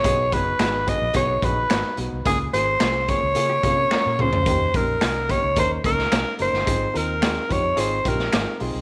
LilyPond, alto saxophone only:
\new Staff \with { instrumentName = "Alto saxophone" } { \time 4/4 \key des \lydian \tempo 4 = 109 des''8 b'4 dis''8 des''8 b'4 r8 | aes'8 c''4 des''2 c''8~ | c''8 bes'4 des''8 c''8 bes'4 c''8~ | c''8 bes'4 des''8 c''8 bes'4 r8 | }